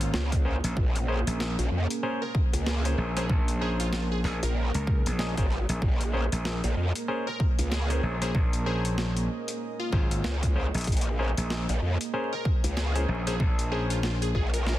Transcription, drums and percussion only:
0.01 closed hi-hat
0.14 snare
0.32 kick, closed hi-hat
0.64 closed hi-hat
0.77 kick
0.96 closed hi-hat
1.27 closed hi-hat
1.40 snare
1.59 closed hi-hat
1.90 closed hi-hat
2.35 kick
2.54 closed hi-hat
2.67 snare
2.85 closed hi-hat
3.17 snare, closed hi-hat
3.29 kick
3.48 closed hi-hat
3.80 closed hi-hat
3.93 snare
4.24 snare
4.43 closed hi-hat
4.74 closed hi-hat
4.87 kick
5.06 closed hi-hat
5.19 snare
5.37 kick, closed hi-hat
5.50 snare
5.69 closed hi-hat
5.82 kick
6.01 closed hi-hat
6.32 closed hi-hat
6.45 snare
6.64 closed hi-hat
6.95 closed hi-hat
7.40 kick
7.59 closed hi-hat
7.72 snare
7.90 closed hi-hat
8.22 snare, closed hi-hat
8.35 kick
8.53 closed hi-hat
8.85 closed hi-hat
8.98 snare
9.17 closed hi-hat
9.48 closed hi-hat
9.93 kick
10.11 closed hi-hat
10.24 snare
10.43 kick, closed hi-hat
10.74 closed hi-hat
10.78 closed hi-hat
10.81 closed hi-hat
10.84 kick, closed hi-hat
10.87 closed hi-hat
10.92 closed hi-hat
10.97 closed hi-hat
11.01 closed hi-hat
11.38 closed hi-hat
11.50 snare
11.69 closed hi-hat
12.01 closed hi-hat
12.45 kick
12.64 closed hi-hat
12.77 snare
12.96 closed hi-hat
13.27 snare, closed hi-hat
13.40 kick
13.59 closed hi-hat
13.90 closed hi-hat
14.03 snare
14.22 closed hi-hat
14.35 kick
14.54 closed hi-hat
14.67 snare

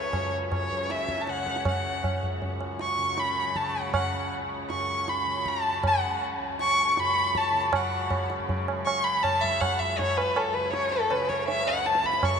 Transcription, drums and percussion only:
0.13 tabla na, tabla ge
0.52 tabla na, tabla ge
0.71 tabla ge
0.90 tabla te
0.99 tabla te
1.09 tabla ke
1.18 tabla te
1.27 tabla te
1.37 tabla te
1.47 tabla ke
1.56 tabla te
1.65 tabla na, tabla ge
2.04 tabla na, tabla ge
2.23 tabla ge
2.42 tabla tin, tabla ge
2.61 tabla na
2.79 tabla te
3.18 tabla te
3.56 tabla ke
3.94 tabla na, tabla ge
4.70 tabla te
5.08 tabla te
5.46 tabla ke
5.83 tabla na, tabla ge
6.59 tabla te
6.97 tabla te
7.35 tabla ke
7.73 tabla na, tabla ge
8.10 tabla na, tabla ge
8.30 tabla te
8.40 tabla ge
8.49 tabla tin, tabla ge
8.68 tabla na
8.87 tabla na
9.24 tabla na, tabla ge
9.43 tabla ge
9.61 tabla na, tabla ge
9.80 tabla ge
9.99 tabla tin, tabla ge
10.18 tabla na
10.36 tabla na
10.73 tabla te
10.92 tabla te
11.10 tabla na
11.30 tabla ke
11.48 tabla tin
11.67 tabla na
11.86 tabla te
11.95 tabla te
12.04 tabla ke
12.13 tabla te
12.23 tabla na, tabla ge

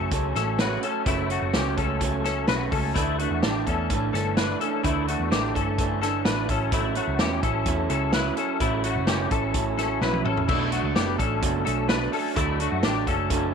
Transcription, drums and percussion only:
0.11 kick, closed hi-hat
0.35 snare, closed hi-hat
0.59 snare, closed hi-hat
0.83 closed hi-hat
1.06 kick, closed hi-hat
1.30 closed hi-hat
1.53 snare, closed hi-hat
1.77 kick, closed hi-hat
2.01 kick, closed hi-hat
2.24 snare, closed hi-hat
2.48 snare, closed hi-hat
2.72 kick, open hi-hat
2.96 kick, closed hi-hat
3.19 closed hi-hat
3.43 snare, closed hi-hat
3.67 kick, closed hi-hat
3.90 kick, closed hi-hat
4.14 snare, closed hi-hat
4.37 snare, closed hi-hat
4.61 closed hi-hat
4.84 kick, closed hi-hat
5.08 closed hi-hat
5.32 snare, closed hi-hat
5.55 kick, closed hi-hat
5.78 kick, closed hi-hat
6.02 snare, closed hi-hat
6.25 snare, closed hi-hat
6.49 kick, closed hi-hat
6.72 kick, closed hi-hat
6.95 closed hi-hat
7.19 snare, closed hi-hat
7.43 kick, closed hi-hat
7.66 kick, closed hi-hat
7.90 closed hi-hat
8.13 snare, closed hi-hat
8.37 closed hi-hat
8.60 kick, closed hi-hat
8.84 closed hi-hat
9.07 snare, closed hi-hat
9.31 kick, closed hi-hat
9.54 kick, closed hi-hat
9.78 snare, closed hi-hat
10.01 snare
10.13 high tom
10.25 mid tom
10.37 floor tom
10.49 kick, crash
10.72 closed hi-hat
10.96 snare, closed hi-hat
11.19 kick, closed hi-hat
11.42 kick, closed hi-hat
11.66 closed hi-hat
11.89 snare, closed hi-hat
12.13 open hi-hat
12.36 kick, closed hi-hat
12.60 closed hi-hat
12.83 snare, closed hi-hat
13.07 kick, closed hi-hat
13.30 kick, closed hi-hat

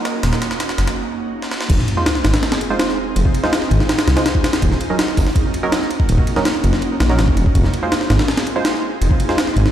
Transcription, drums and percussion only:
0.05 snare, ride
0.23 snare, ride
0.33 snare
0.42 snare, ride
0.51 snare
0.60 snare, ride
0.69 snare
0.78 snare, ride
0.87 snare, ride
1.42 snare
1.51 snare
1.61 snare
1.70 kick, crash, ride
1.79 snare
1.88 ride
2.06 snare, ride
2.15 snare
2.25 snare, ride
2.34 snare, ride
2.43 snare, ride
2.52 snare, ride
2.61 ride
2.79 snare, ride
2.89 snare
3.16 ride
3.25 kick
3.35 ride
3.44 snare
3.53 snare, ride
3.62 snare
3.71 ride
3.80 snare
3.89 snare, ride
3.99 snare, ride
4.08 snare, ride
4.17 snare, ride
4.26 snare, ride
4.35 kick
4.44 snare, ride
4.53 snare, ride
4.62 kick, ride
4.72 snare
4.81 ride
4.99 snare, ride
5.08 snare
5.17 kick, open hi-hat
5.27 snare
5.36 kick, ride
5.54 ride
5.72 snare, ride
5.81 snare
5.91 ride
6.00 kick
6.09 ride
6.18 kick
6.27 ride
6.36 snare
6.45 snare, ride
6.55 snare
6.64 ride
6.73 snare
6.82 ride
7.00 snare, ride
7.09 snare
7.19 snare, ride
7.28 kick
7.37 ride
7.46 kick
7.55 kick, ride
7.64 snare
7.74 ride
7.92 snare, ride
8.01 snare
8.10 snare, ride
8.19 snare, ride
8.28 snare, ride
8.37 snare, ride
8.47 ride
8.65 snare, ride
8.74 snare
9.02 ride
9.11 kick
9.20 ride
9.29 snare
9.38 snare, ride
9.47 snare
9.57 ride
9.66 snare

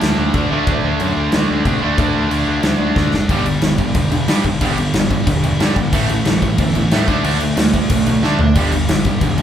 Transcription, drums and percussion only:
0.01 snare, crash
0.34 kick, crash
0.67 kick, crash
1.00 crash
1.32 snare, crash
1.65 kick, crash
1.98 kick, crash
2.31 crash
2.63 snare, crash
2.96 kick, snare
3.14 snare
3.29 kick, crash
3.46 crash
3.62 snare, crash
3.78 kick, crash
3.94 kick, crash
4.12 crash
4.28 snare, crash
4.44 kick, crash
4.61 kick, crash
4.78 crash
4.94 snare, crash
5.10 kick, crash
5.27 kick, crash
5.44 crash
5.60 snare, crash
5.76 kick, crash
5.93 kick, crash
6.09 crash
6.25 snare, crash
6.42 kick, crash
6.58 kick, crash
6.75 crash
6.91 snare, crash
7.08 kick, crash
7.24 crash
7.40 crash
7.57 snare, crash
7.74 kick, crash
7.89 kick, crash
8.06 crash
8.24 snare
8.39 floor tom
8.55 kick, crash
8.72 crash
8.89 snare, crash
9.05 kick, crash
9.21 kick, crash
9.38 crash

